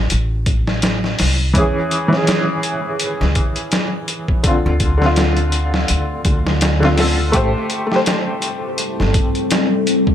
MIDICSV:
0, 0, Header, 1, 5, 480
1, 0, Start_track
1, 0, Tempo, 722892
1, 1032, Time_signature, 4, 2, 24, 8
1, 6738, End_track
2, 0, Start_track
2, 0, Title_t, "Ambient pad"
2, 0, Program_c, 0, 92
2, 4866, Note_on_c, 0, 64, 70
2, 4866, Note_on_c, 0, 69, 87
2, 4869, Note_on_c, 0, 55, 76
2, 4869, Note_on_c, 0, 60, 74
2, 6738, Note_off_c, 0, 55, 0
2, 6738, Note_off_c, 0, 60, 0
2, 6738, Note_off_c, 0, 64, 0
2, 6738, Note_off_c, 0, 69, 0
2, 6738, End_track
3, 0, Start_track
3, 0, Title_t, "Felt piano"
3, 0, Program_c, 1, 0
3, 1019, Note_on_c, 1, 52, 83
3, 1038, Note_on_c, 1, 61, 78
3, 1050, Note_on_c, 1, 68, 92
3, 1172, Control_c, 1, 64, 127
3, 1368, Note_off_c, 1, 52, 0
3, 1378, Note_off_c, 1, 61, 0
3, 1382, Note_on_c, 1, 52, 82
3, 1384, Note_off_c, 1, 68, 0
3, 1412, Note_on_c, 1, 61, 73
3, 1441, Note_on_c, 1, 68, 90
3, 2914, Note_off_c, 1, 52, 0
3, 2929, Note_off_c, 1, 61, 0
3, 2943, Note_on_c, 1, 50, 64
3, 2944, Note_off_c, 1, 68, 0
3, 2960, Control_c, 1, 64, 0
3, 2961, Note_on_c, 1, 60, 57
3, 2972, Note_on_c, 1, 65, 72
3, 3084, Control_c, 1, 64, 127
3, 3291, Note_off_c, 1, 50, 0
3, 3299, Note_off_c, 1, 60, 0
3, 3304, Note_on_c, 1, 50, 80
3, 3305, Note_off_c, 1, 65, 0
3, 3331, Note_on_c, 1, 60, 71
3, 3360, Note_on_c, 1, 65, 92
3, 4488, Note_off_c, 1, 50, 0
3, 4502, Note_off_c, 1, 60, 0
3, 4516, Note_off_c, 1, 65, 0
3, 4516, Note_on_c, 1, 50, 82
3, 4531, Note_on_c, 1, 60, 71
3, 4547, Note_on_c, 1, 65, 90
3, 4601, Note_off_c, 1, 50, 0
3, 4608, Note_off_c, 1, 60, 0
3, 4617, Note_off_c, 1, 65, 0
3, 4621, Note_on_c, 1, 50, 64
3, 4636, Note_on_c, 1, 60, 56
3, 4649, Note_on_c, 1, 69, 73
3, 4841, Note_off_c, 1, 50, 0
3, 4849, Note_off_c, 1, 60, 0
3, 4855, Note_off_c, 1, 69, 0
3, 4861, Note_on_c, 1, 57, 91
3, 4875, Note_on_c, 1, 67, 83
3, 4880, Control_c, 1, 64, 0
3, 4890, Note_on_c, 1, 72, 95
3, 5004, Control_c, 1, 64, 127
3, 5209, Note_off_c, 1, 57, 0
3, 5217, Note_off_c, 1, 67, 0
3, 5224, Note_off_c, 1, 72, 0
3, 5224, Note_on_c, 1, 57, 75
3, 5256, Note_on_c, 1, 67, 73
3, 5284, Note_on_c, 1, 72, 83
3, 6738, Note_off_c, 1, 57, 0
3, 6738, Note_off_c, 1, 67, 0
3, 6738, Note_off_c, 1, 72, 0
3, 6738, End_track
4, 0, Start_track
4, 0, Title_t, "Upright bass"
4, 0, Program_c, 2, 32
4, 78, Note_on_c, 2, 33, 83
4, 775, Note_off_c, 2, 33, 0
4, 800, Note_on_c, 2, 36, 82
4, 1011, Note_off_c, 2, 36, 0
4, 1032, Note_on_c, 2, 40, 90
4, 1151, Note_off_c, 2, 40, 0
4, 2132, Note_on_c, 2, 37, 91
4, 2221, Note_off_c, 2, 37, 0
4, 3093, Note_on_c, 2, 38, 96
4, 3895, Note_off_c, 2, 38, 0
4, 3917, Note_on_c, 2, 38, 84
4, 4148, Note_off_c, 2, 38, 0
4, 4152, Note_on_c, 2, 38, 90
4, 4852, Note_off_c, 2, 38, 0
4, 4875, Note_on_c, 2, 33, 88
4, 4992, Note_off_c, 2, 33, 0
4, 5978, Note_on_c, 2, 31, 86
4, 6065, Note_off_c, 2, 31, 0
4, 6738, End_track
5, 0, Start_track
5, 0, Title_t, "Drums"
5, 67, Note_on_c, 9, 42, 81
5, 133, Note_off_c, 9, 42, 0
5, 307, Note_on_c, 9, 42, 57
5, 308, Note_on_c, 9, 36, 85
5, 373, Note_off_c, 9, 42, 0
5, 374, Note_off_c, 9, 36, 0
5, 448, Note_on_c, 9, 38, 43
5, 515, Note_off_c, 9, 38, 0
5, 546, Note_on_c, 9, 42, 71
5, 553, Note_on_c, 9, 38, 98
5, 612, Note_off_c, 9, 42, 0
5, 620, Note_off_c, 9, 38, 0
5, 691, Note_on_c, 9, 38, 41
5, 757, Note_off_c, 9, 38, 0
5, 788, Note_on_c, 9, 46, 70
5, 795, Note_on_c, 9, 38, 44
5, 854, Note_off_c, 9, 46, 0
5, 861, Note_off_c, 9, 38, 0
5, 1029, Note_on_c, 9, 36, 101
5, 1029, Note_on_c, 9, 42, 77
5, 1095, Note_off_c, 9, 42, 0
5, 1096, Note_off_c, 9, 36, 0
5, 1270, Note_on_c, 9, 42, 61
5, 1337, Note_off_c, 9, 42, 0
5, 1412, Note_on_c, 9, 38, 38
5, 1479, Note_off_c, 9, 38, 0
5, 1509, Note_on_c, 9, 42, 80
5, 1517, Note_on_c, 9, 38, 99
5, 1576, Note_off_c, 9, 42, 0
5, 1583, Note_off_c, 9, 38, 0
5, 1748, Note_on_c, 9, 42, 63
5, 1814, Note_off_c, 9, 42, 0
5, 1989, Note_on_c, 9, 42, 84
5, 2055, Note_off_c, 9, 42, 0
5, 2132, Note_on_c, 9, 38, 37
5, 2198, Note_off_c, 9, 38, 0
5, 2226, Note_on_c, 9, 42, 58
5, 2229, Note_on_c, 9, 36, 84
5, 2293, Note_off_c, 9, 42, 0
5, 2296, Note_off_c, 9, 36, 0
5, 2362, Note_on_c, 9, 42, 40
5, 2429, Note_off_c, 9, 42, 0
5, 2468, Note_on_c, 9, 42, 75
5, 2475, Note_on_c, 9, 38, 95
5, 2534, Note_off_c, 9, 42, 0
5, 2541, Note_off_c, 9, 38, 0
5, 2709, Note_on_c, 9, 42, 61
5, 2775, Note_off_c, 9, 42, 0
5, 2845, Note_on_c, 9, 36, 82
5, 2911, Note_off_c, 9, 36, 0
5, 2946, Note_on_c, 9, 42, 84
5, 2949, Note_on_c, 9, 36, 104
5, 3013, Note_off_c, 9, 42, 0
5, 3015, Note_off_c, 9, 36, 0
5, 3187, Note_on_c, 9, 42, 64
5, 3189, Note_on_c, 9, 36, 84
5, 3253, Note_off_c, 9, 42, 0
5, 3256, Note_off_c, 9, 36, 0
5, 3332, Note_on_c, 9, 38, 36
5, 3398, Note_off_c, 9, 38, 0
5, 3428, Note_on_c, 9, 42, 75
5, 3436, Note_on_c, 9, 38, 97
5, 3495, Note_off_c, 9, 42, 0
5, 3502, Note_off_c, 9, 38, 0
5, 3563, Note_on_c, 9, 42, 38
5, 3629, Note_off_c, 9, 42, 0
5, 3666, Note_on_c, 9, 42, 66
5, 3733, Note_off_c, 9, 42, 0
5, 3810, Note_on_c, 9, 38, 46
5, 3877, Note_off_c, 9, 38, 0
5, 3906, Note_on_c, 9, 42, 88
5, 3973, Note_off_c, 9, 42, 0
5, 4148, Note_on_c, 9, 42, 58
5, 4149, Note_on_c, 9, 36, 89
5, 4214, Note_off_c, 9, 42, 0
5, 4216, Note_off_c, 9, 36, 0
5, 4293, Note_on_c, 9, 38, 46
5, 4360, Note_off_c, 9, 38, 0
5, 4389, Note_on_c, 9, 42, 79
5, 4397, Note_on_c, 9, 38, 101
5, 4456, Note_off_c, 9, 42, 0
5, 4463, Note_off_c, 9, 38, 0
5, 4535, Note_on_c, 9, 38, 45
5, 4601, Note_off_c, 9, 38, 0
5, 4632, Note_on_c, 9, 46, 74
5, 4639, Note_on_c, 9, 38, 47
5, 4698, Note_off_c, 9, 46, 0
5, 4705, Note_off_c, 9, 38, 0
5, 4870, Note_on_c, 9, 42, 82
5, 4871, Note_on_c, 9, 36, 101
5, 4936, Note_off_c, 9, 42, 0
5, 4938, Note_off_c, 9, 36, 0
5, 5111, Note_on_c, 9, 42, 58
5, 5177, Note_off_c, 9, 42, 0
5, 5256, Note_on_c, 9, 38, 42
5, 5323, Note_off_c, 9, 38, 0
5, 5353, Note_on_c, 9, 42, 81
5, 5361, Note_on_c, 9, 38, 104
5, 5420, Note_off_c, 9, 42, 0
5, 5427, Note_off_c, 9, 38, 0
5, 5591, Note_on_c, 9, 42, 64
5, 5657, Note_off_c, 9, 42, 0
5, 5829, Note_on_c, 9, 42, 86
5, 5896, Note_off_c, 9, 42, 0
5, 5975, Note_on_c, 9, 38, 39
5, 6042, Note_off_c, 9, 38, 0
5, 6070, Note_on_c, 9, 42, 59
5, 6071, Note_on_c, 9, 36, 88
5, 6137, Note_off_c, 9, 42, 0
5, 6138, Note_off_c, 9, 36, 0
5, 6209, Note_on_c, 9, 42, 38
5, 6275, Note_off_c, 9, 42, 0
5, 6312, Note_on_c, 9, 42, 83
5, 6319, Note_on_c, 9, 38, 104
5, 6378, Note_off_c, 9, 42, 0
5, 6385, Note_off_c, 9, 38, 0
5, 6553, Note_on_c, 9, 42, 63
5, 6620, Note_off_c, 9, 42, 0
5, 6687, Note_on_c, 9, 36, 88
5, 6738, Note_off_c, 9, 36, 0
5, 6738, End_track
0, 0, End_of_file